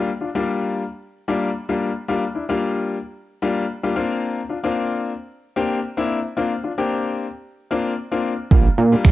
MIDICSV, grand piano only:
0, 0, Header, 1, 2, 480
1, 0, Start_track
1, 0, Key_signature, -2, "minor"
1, 0, Tempo, 535714
1, 1867, Time_signature, 4, 2, 24, 8
1, 8169, End_track
2, 0, Start_track
2, 0, Title_t, "Grand piano"
2, 0, Program_c, 0, 0
2, 185, Note_on_c, 0, 62, 50
2, 190, Note_on_c, 0, 65, 54
2, 250, Note_off_c, 0, 62, 0
2, 253, Note_off_c, 0, 65, 0
2, 313, Note_on_c, 0, 55, 82
2, 314, Note_on_c, 0, 58, 77
2, 315, Note_on_c, 0, 62, 75
2, 318, Note_on_c, 0, 65, 88
2, 733, Note_off_c, 0, 55, 0
2, 733, Note_off_c, 0, 58, 0
2, 734, Note_off_c, 0, 62, 0
2, 735, Note_off_c, 0, 65, 0
2, 1147, Note_on_c, 0, 55, 84
2, 1149, Note_on_c, 0, 58, 76
2, 1150, Note_on_c, 0, 62, 75
2, 1151, Note_on_c, 0, 65, 87
2, 1332, Note_off_c, 0, 55, 0
2, 1333, Note_off_c, 0, 58, 0
2, 1333, Note_off_c, 0, 62, 0
2, 1334, Note_off_c, 0, 65, 0
2, 1513, Note_on_c, 0, 55, 78
2, 1514, Note_on_c, 0, 58, 71
2, 1516, Note_on_c, 0, 62, 72
2, 1517, Note_on_c, 0, 65, 85
2, 1691, Note_off_c, 0, 55, 0
2, 1692, Note_off_c, 0, 58, 0
2, 1693, Note_off_c, 0, 62, 0
2, 1693, Note_off_c, 0, 65, 0
2, 1867, Note_on_c, 0, 55, 80
2, 1868, Note_on_c, 0, 58, 73
2, 1870, Note_on_c, 0, 62, 74
2, 1871, Note_on_c, 0, 65, 89
2, 1995, Note_off_c, 0, 55, 0
2, 1996, Note_off_c, 0, 58, 0
2, 1996, Note_off_c, 0, 62, 0
2, 1997, Note_off_c, 0, 65, 0
2, 2105, Note_on_c, 0, 62, 49
2, 2110, Note_on_c, 0, 64, 53
2, 2170, Note_off_c, 0, 62, 0
2, 2173, Note_off_c, 0, 64, 0
2, 2231, Note_on_c, 0, 55, 80
2, 2233, Note_on_c, 0, 58, 74
2, 2233, Note_on_c, 0, 62, 72
2, 2235, Note_on_c, 0, 65, 92
2, 2652, Note_off_c, 0, 55, 0
2, 2653, Note_off_c, 0, 58, 0
2, 2653, Note_off_c, 0, 62, 0
2, 2654, Note_off_c, 0, 65, 0
2, 3065, Note_on_c, 0, 55, 83
2, 3067, Note_on_c, 0, 58, 77
2, 3069, Note_on_c, 0, 62, 80
2, 3070, Note_on_c, 0, 65, 94
2, 3251, Note_off_c, 0, 55, 0
2, 3252, Note_off_c, 0, 58, 0
2, 3253, Note_off_c, 0, 62, 0
2, 3253, Note_off_c, 0, 65, 0
2, 3434, Note_on_c, 0, 55, 78
2, 3436, Note_on_c, 0, 58, 71
2, 3438, Note_on_c, 0, 62, 72
2, 3438, Note_on_c, 0, 65, 89
2, 3533, Note_off_c, 0, 58, 0
2, 3535, Note_off_c, 0, 62, 0
2, 3536, Note_off_c, 0, 65, 0
2, 3546, Note_on_c, 0, 58, 87
2, 3547, Note_off_c, 0, 55, 0
2, 3547, Note_on_c, 0, 60, 76
2, 3548, Note_on_c, 0, 62, 77
2, 3550, Note_on_c, 0, 65, 93
2, 3937, Note_off_c, 0, 58, 0
2, 3937, Note_off_c, 0, 60, 0
2, 3938, Note_off_c, 0, 62, 0
2, 3938, Note_off_c, 0, 65, 0
2, 4026, Note_on_c, 0, 62, 49
2, 4031, Note_on_c, 0, 65, 55
2, 4091, Note_off_c, 0, 62, 0
2, 4093, Note_off_c, 0, 65, 0
2, 4153, Note_on_c, 0, 58, 81
2, 4154, Note_on_c, 0, 60, 76
2, 4155, Note_on_c, 0, 62, 73
2, 4157, Note_on_c, 0, 65, 89
2, 4573, Note_off_c, 0, 58, 0
2, 4573, Note_off_c, 0, 60, 0
2, 4574, Note_off_c, 0, 62, 0
2, 4575, Note_off_c, 0, 65, 0
2, 4983, Note_on_c, 0, 58, 85
2, 4984, Note_on_c, 0, 60, 76
2, 4986, Note_on_c, 0, 62, 78
2, 4988, Note_on_c, 0, 67, 92
2, 5170, Note_off_c, 0, 58, 0
2, 5171, Note_off_c, 0, 60, 0
2, 5172, Note_off_c, 0, 62, 0
2, 5172, Note_off_c, 0, 67, 0
2, 5350, Note_on_c, 0, 58, 80
2, 5352, Note_on_c, 0, 60, 73
2, 5353, Note_on_c, 0, 62, 72
2, 5354, Note_on_c, 0, 64, 87
2, 5530, Note_off_c, 0, 58, 0
2, 5531, Note_off_c, 0, 60, 0
2, 5531, Note_off_c, 0, 62, 0
2, 5532, Note_off_c, 0, 64, 0
2, 5704, Note_on_c, 0, 58, 80
2, 5706, Note_on_c, 0, 60, 72
2, 5708, Note_on_c, 0, 62, 71
2, 5709, Note_on_c, 0, 65, 92
2, 5834, Note_off_c, 0, 58, 0
2, 5834, Note_off_c, 0, 60, 0
2, 5835, Note_off_c, 0, 62, 0
2, 5836, Note_off_c, 0, 65, 0
2, 5945, Note_on_c, 0, 62, 51
2, 5949, Note_on_c, 0, 65, 54
2, 6010, Note_off_c, 0, 62, 0
2, 6013, Note_off_c, 0, 65, 0
2, 6072, Note_on_c, 0, 58, 81
2, 6074, Note_on_c, 0, 60, 75
2, 6075, Note_on_c, 0, 62, 76
2, 6076, Note_on_c, 0, 67, 87
2, 6492, Note_off_c, 0, 58, 0
2, 6493, Note_off_c, 0, 60, 0
2, 6494, Note_off_c, 0, 62, 0
2, 6494, Note_off_c, 0, 67, 0
2, 6905, Note_on_c, 0, 58, 81
2, 6907, Note_on_c, 0, 60, 75
2, 6908, Note_on_c, 0, 62, 74
2, 6910, Note_on_c, 0, 65, 93
2, 7091, Note_off_c, 0, 58, 0
2, 7092, Note_off_c, 0, 60, 0
2, 7092, Note_off_c, 0, 62, 0
2, 7093, Note_off_c, 0, 65, 0
2, 7271, Note_on_c, 0, 58, 77
2, 7273, Note_on_c, 0, 60, 72
2, 7275, Note_on_c, 0, 62, 71
2, 7276, Note_on_c, 0, 65, 86
2, 7451, Note_off_c, 0, 58, 0
2, 7451, Note_off_c, 0, 60, 0
2, 7452, Note_off_c, 0, 62, 0
2, 7453, Note_off_c, 0, 65, 0
2, 7625, Note_on_c, 0, 55, 78
2, 7626, Note_on_c, 0, 58, 74
2, 7627, Note_on_c, 0, 62, 69
2, 7630, Note_on_c, 0, 65, 90
2, 7754, Note_off_c, 0, 55, 0
2, 7755, Note_off_c, 0, 58, 0
2, 7755, Note_off_c, 0, 62, 0
2, 7757, Note_off_c, 0, 65, 0
2, 7866, Note_on_c, 0, 62, 49
2, 7870, Note_on_c, 0, 65, 55
2, 7931, Note_off_c, 0, 62, 0
2, 7933, Note_off_c, 0, 65, 0
2, 7993, Note_on_c, 0, 55, 85
2, 7995, Note_on_c, 0, 58, 76
2, 7996, Note_on_c, 0, 62, 75
2, 7996, Note_on_c, 0, 65, 92
2, 8169, Note_off_c, 0, 55, 0
2, 8169, Note_off_c, 0, 58, 0
2, 8169, Note_off_c, 0, 62, 0
2, 8169, Note_off_c, 0, 65, 0
2, 8169, End_track
0, 0, End_of_file